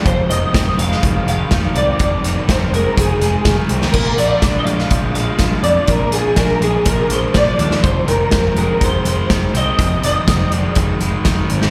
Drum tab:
CC |----------------|----------------|x---------------|----------------|
HH |x-x-x-x-x-x-x-x-|x-x-x-x-x-x-x-x-|--x-x-x-x-x-x-x-|x-x-x-x-x-x-x-x-|
SD |----o--o----o---|----o-------o--o|----o--o----o---|----o-------o--o|
BD |o---o---o---o---|o---o---o---o---|o---o---o---o---|o---o---o---o---|

CC |----------------|----------------|
HH |x-x-x-x-x-x-x-x-|x-x-x-x-x-x-x-x-|
SD |----o-------o---|----o-------o--o|
BD |o---o---o---o---|o---o---o---o---|